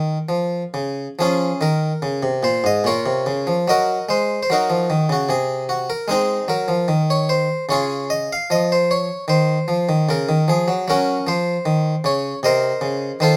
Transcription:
Already playing: D#3 F4 A#4
0.29 F3
0.74 C#3
1.19 F3 C#4 F4 G#4
1.61 D#3 A#4
2.02 C#3
2.23 C3
2.43 A#2 C5
2.64 G#2 D#5
2.84 A#2 F4 A#4 C#5
3.06 C3
3.26 C#3
3.47 F3
3.68 F#3 F#4 A#4 D#5
4.09 G#3 C5
4.43 C5
4.50 F#3 D#4 F#4 A#4
4.70 F3
4.90 D#3
5.09 C#3 F#4
5.29 C3 G#4
5.69 F#4
5.90 A#4
6.08 G#3 C4 D#4 G#4
6.48 F#3 A#4
6.68 F3
6.88 D#3
7.10 C#5
7.29 C5
7.69 C#3 F4 G#4 C#5
8.10 D#5
8.33 F5
8.50 F3 D#5
8.72 C5
8.91 C#5
9.28 D#3 C5
9.68 F3
9.89 D#3
10.09 C#3 A#4
10.29 D#3
10.48 F3 G#4
10.68 F#3
10.88 F#3 C#4 F#4 A#4
11.27 F3 C5
11.66 D#3
12.04 C#3 C#5
12.43 C3 A#4 C5 D#5
12.81 C#3
13.20 D#3 F4 A4 C5

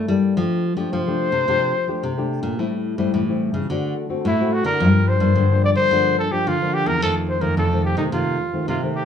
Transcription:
Already playing: G2
0.08 G3 A#3 E4 A4
0.37 F3 A3 D4 G4
0.76 F3 A3 D4 G4
0.92 C3 F3 C5
1.07 A3 D4 G4
1.32 C3
1.48 C3 F3 A3 D4 G4
1.88 A3 D4 G4
2.03 C3
2.18 A3 D4 G4
2.43 A#2
2.59 A2 G3 C4 E4
2.98 A2 G3 C4 E4
3.14 A2 E3
3.29 G3 C4 E4
3.54 C#3
3.70 D3 A3 C4 F#4
4.09 A3 C4 F#4
4.25 A2 E4
4.40 A3 C4 F#4
4.53 F#4
4.64 D3 A#4
4.80 G2 F3 A#3 D4
5.08 C5
5.20 G2 F3 A#3 D4
5.35 G2 D3
5.51 F3 A#3 D4
5.65 D5
5.75 D3 C5
5.91 G2 D3 F3 A#3 D4
6.19 A4
6.31 F3 A#3 D4 G4
6.47 D3 F4
6.62 F3 A#3 D4
6.74 G4
6.86 E2 A#4
7.02 F2 D#3 A3 C4 A4
7.29 C5
7.41 F2 D#3 A3 C4 A#4
7.57 F2 C3 A4
7.73 D#3 A3 C4
7.85 G4
7.97 C3 D#3 A3 C4 D#4
8.12 F2 C3 D#3 A3 C4 F4
8.53 D#3 A3 C4
8.68 C3 F4
8.83 D#3 A3 C4
8.96 G4

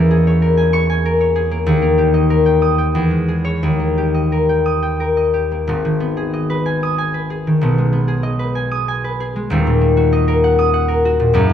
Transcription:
Already playing: E2 A#3 C#4 E4 C#5 E5 G#5 C#6
0.11 G#4
0.27 C#5
0.42 A#4
0.57 G#5
0.73 C#6
0.90 G#5
1.06 A#4
1.21 C#5
1.36 G#4
1.51 A#3
1.66 D#2
1.82 A#3
1.98 G4
2.14 D#5
2.30 A#4
2.46 G5
2.62 D#6
2.78 G5
2.95 E2
3.11 G#3
3.28 G#4
3.45 C#5
3.63 D#2
3.79 A#3
3.98 G4
4.14 D#5
4.32 A#4
4.49 G5
4.66 D#6
4.83 G5
5.00 A#4
5.17 D#5
5.34 G4
5.52 A#3
5.67 G#1 G#2
5.85 D#3
6.00 B3
6.17 G#4
6.33 D#5
6.50 B4
6.66 G#5
6.83 D#6
6.98 G#5
7.14 B4
7.30 G#4
7.47 D#3
7.61 B1 B2
7.78 G#3
7.93 B3
8.08 G#4
8.23 D#5
8.39 B4
8.55 G#5
8.71 D#6
8.88 G#5
9.04 B4
9.20 G#4
9.36 G#3
9.50 D#1 D#2
9.67 A#2
9.81 A#3
9.97 F#4
10.13 D#5
10.28 A#4
10.44 F#5
10.59 D#6
10.74 F#5
10.88 A#4
11.05 F#4
11.20 A#2
11.33 F#1 F#2
11.49 F#3

